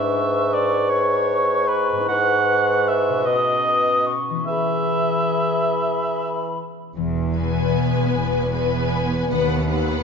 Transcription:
Already playing: harp G#2 D4 E4 B4, bassoon G#2, clarinet B4, cor anglais E5, flute C#6
0.54 cor anglais D5
0.90 cor anglais C#5
1.68 cor anglais B4
1.92 harp G#2
1.96 harp B3
2.00 harp E4
2.05 bassoon G#2, harp B4, cor anglais F#5
2.10 clarinet B4
2.89 cor anglais E5
3.09 harp B2
3.14 harp C#4
3.18 harp F#4
3.23 bassoon B2, harp A4, cor anglais D#5
3.27 flute D#6
3.66 flute D#6
4.07 flute C#6
4.30 harp E3
4.35 harp B3
4.39 harp E4
4.44 bassoon E3, harp G#4, cor anglais E5
4.48 clarinet G#4, flute B5
6.96 double bass section E1, cello section E2, harp E3
7.35 viola section B3, harp B4, violin section B4 G#5
7.75 harp B3
8.14 double bass section E1, cello section E2, harp B4
8.53 viola section B3, harp E4, violin section B4 G#5
8.92 harp B4
9.30 cello section D#2, double bass section D#2, harp D#3, viola section B3, violin section B4 F#5
9.69 viola section B3, harp B3, violin section B4 F#5

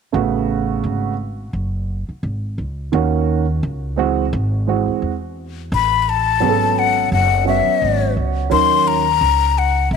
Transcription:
0.12 upright bass A1, grand piano C#3 A3 B3 F#4
0.84 upright bass G#1
1.53 upright bass F#1
2.09 muted upright bass stroke
2.23 upright bass G#1
2.58 upright bass C#2
2.92 upright bass D#2, grand piano D#3 A#3 C#4 F#4
3.63 upright bass C#2
3.96 grand piano E3 G#3 C4 F#4
4.33 upright bass G#1
4.67 grand piano E3 G#3 C4 F#4
4.88 muted upright bass stroke
5.02 upright bass E2
5.72 upright bass A1, flute B5
6.02 flute B5
6.09 flute A5
6.40 upright bass G#1, grand piano F#3 B3 C#4 G#4
6.49 grand piano A4
6.79 flute F#5
7.12 upright bass F#1, flute F#5
7.45 grand piano F#3 B3 C#4 F#4, flute E5
7.67 muted upright bass stroke
7.82 upright bass G#1
8.17 upright bass C#2
8.50 upright bass D#2, grand piano F#3 C#4 D#4 A#4, flute C6
8.88 flute A#5
9.21 upright bass C#2
9.58 flute F#5
9.91 upright bass G#1, flute E5

